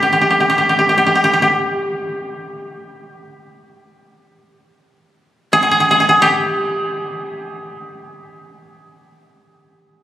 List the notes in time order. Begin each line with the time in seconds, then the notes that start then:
0.03 G4
0.13 G4
0.21 G4
0.30 G4
0.40 G4
0.50 G4
0.58 G4
0.69 G4
0.79 G4
0.89 G4
0.98 G4
1.06 G4
1.15 G4
1.24 G4
1.33 G4
1.42 G4
5.53 G#4
5.63 G#4
5.71 G#4
5.80 G#4
5.91 G#4
6.00 G#4
6.09 G#4
6.22 G4